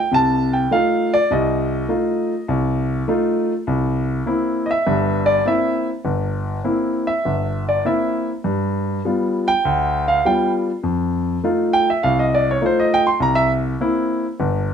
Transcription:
grand piano
Already playing: G5
0.11 C2 C3 A5
0.53 G5
0.71 A3 D#4 F4 F5
1.13 D5
1.30 C2 C3 D#5
1.88 A3 D#4 F4
2.48 C2
3.08 A3 D#4 F4
3.67 C2
4.26 A#3 C4 E4
4.66 D#5
4.71 E5
4.87 G1 G2
5.26 D5
5.45 A#3 C4 E4 E5
6.05 G1
6.64 A#3 C4 E4
7.07 E5
7.25 G1
7.69 D5
7.85 A#3 C4 E4 E5
8.44 G2
9.05 G3 B3 F4
9.48 G5
9.65 D2
10.08 F5
10.25 G3 B3 F4 G5
10.83 F2
11.44 A3 D#4 F4
11.73 G5
11.90 E5
12.03 C2 F5
12.19 D#5
12.35 D5
12.51 C#5
12.62 A3 D#4 F4
12.66 C5
12.80 D#5
12.94 G5
13.07 C6
13.20 C2 A#5
13.35 E5
13.81 A#3 C4 E4
14.40 G1

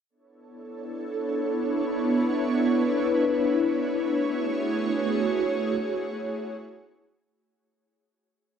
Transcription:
ambient pad
0.10 B3 D4 E4 A4 C#5
1.89 B4
3.68 A3 F#4 G#4 C#5

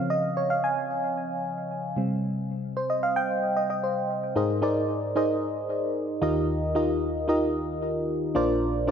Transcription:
fm electric piano
Already playing: C#3 F3 C4 F5
0.10 D#5
0.37 C#5
0.50 F5
0.64 G#5
1.96 C3 G3 C4
2.77 C5
2.90 D#5
3.03 F5
3.16 G5
3.57 D#5
3.70 D#5
3.84 C5
4.36 G#2 D#4 G#4 A#4 C5 D#5
4.62 D#4 G#4 A#4 C5 D5
5.16 D#4 G#4 A#4 C5 D#5
6.22 D#2 D#3 D#4 F4 G4 A#4 D#5
6.75 D#4 F4 G4 A#4 D#5
7.28 D#4 F4 G4 A#4 D#5
8.35 A#1 A#2 D4 F4 A#4 C5 D5
8.87 D4 F4 A#4

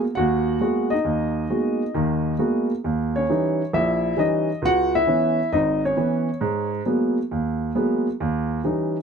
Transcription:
upright piano
0.15 D#2 F#4 F#5
0.60 G#3 A#3 B3 F#4
0.90 D#4 D#5
1.05 D#2
1.50 G#3 A#3 B3 F#4
1.94 D#2 D#3
2.39 G#3 A#3 B3 F#4
2.84 D#2
3.16 C#4 C#5
3.30 E3 G3 C#4 D#4
3.73 A#1 E4 E5
4.17 E3 G3 C#4 D#4 D#5
4.62 C#2 F#4 F#5
4.95 E4 E5
5.07 E3 B3 C#4
5.53 G#1 D#4 D#5
5.85 C#4 C#5
5.97 E3 B3 C#4
6.41 G#2
6.85 F#3 G#3 A#3 B3
7.31 D#2
7.75 F#3 G#3 A#3 B3
8.20 D#2
8.64 E3 G3 C#4 D#4

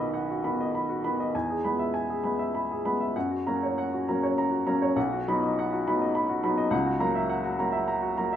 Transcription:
upright piano
Already playing: B1 D#3 B3 F#4 D#5 F#5 B5
0.14 F#5
0.30 F#4
0.44 D#3 B3 B5
0.60 D#5
0.75 B5
0.89 F#4
1.04 D#3 B3 B5
1.20 D#5
1.35 E2 G#5
1.50 G#4
1.64 G#3 B3 B5
1.79 E5
1.94 G#5
2.10 G#4
2.24 G#3 B3 B5
2.39 E5
2.55 B5
2.71 G#4
2.85 G#3 B3 B5
3.00 E5
3.16 F#2 F#5
3.31 F#4
3.47 F#3 A#3 C#4 A#5
3.63 C#5
3.78 F#5
3.93 F#4
4.08 F#3 A#3 C#4 A#5
4.23 C#5
4.38 A#5
4.51 F#4
4.66 F#3 A#3 C#4 A#5
4.82 C#5
4.96 B1 F#5
5.13 F#4
5.28 F#3 B3 D#4 B5
5.43 D#5
5.59 F#5
5.73 F#4
5.88 F#3 B3 D#4 B5
6.02 D#5
6.15 B5
6.29 F#4
6.44 F#3 B3 D#4 B5
6.58 D#5
6.71 C#2 F#5
6.86 F#4
7.00 F#3 A#3 A#5
7.15 E5
7.29 F#5
7.44 F#4
7.59 F#3 A#3 A#5
7.72 E5
7.88 A#5
8.02 F#4
8.17 F#3 A#3 A#5
8.33 E5

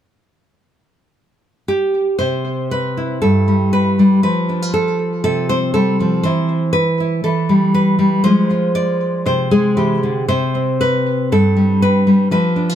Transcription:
nylon-string guitar
1.68 G4
2.19 C3 C5
2.71 B4
2.97 E4
3.22 G2 A4
3.48 G3
3.73 B4
3.99 G3
4.23 F3 B4
4.49 D4
4.62 F4
4.74 A4
5.24 C3 A4
5.49 C4 C5
5.74 G3 A4
6.00 F3
6.23 E3 C5
6.73 B4
7.00 E4
7.24 E3 A4
7.49 G3
7.74 B4
7.99 G3
8.24 F3 G#3 F4 C5
8.51 F4
8.75 D5
9.26 C3 C5
9.51 G#3 G#4
9.77 E3 G4
10.03 D3
10.28 C3 C5
10.55 C4
10.81 B4
11.32 G2 A4
11.57 G3
11.82 B4
12.07 G3
12.31 F3 B4
12.56 D4
12.69 F4

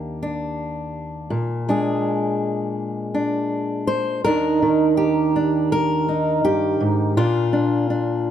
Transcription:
steel-string acoustic guitar
Already playing: D#2 A#3 D4 G4
0.23 D4
1.30 A#2
1.69 G#3 D4 G#4
3.14 D4
3.87 C5
4.24 D#2 D#3 D4 D#4 A#4
4.62 D#3
4.97 G4
5.36 D4
5.72 A#4
6.09 D#4
6.45 G2 G4
6.80 G#2
7.17 A#2 D4 F4
7.53 D4
7.90 D4

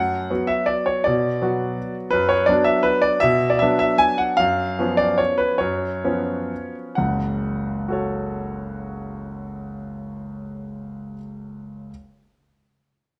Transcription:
grand piano
Already playing: F#2 F#5
0.30 F#3 B3 F#4
0.47 E5
0.66 D5
0.86 C#5
1.04 B2 D5
1.42 F#3 B3 F#4
2.11 F#2 B4
2.29 C#5
2.46 F#3 B3 D4 D5
2.64 E5
2.83 B4
3.02 D5
3.20 B2 E5
3.50 D5
3.59 F#3 B3 D4 E5
3.79 E5
3.98 G#5
4.18 F#5
4.37 F#2 F5
4.79 F3 B3 C#4
4.97 D5
5.18 C#5
5.38 B4
5.58 F#2 C#5
6.04 F3 B3 C#4
6.95 F#1 C#2 F#5
7.88 F#4 A4 C#5

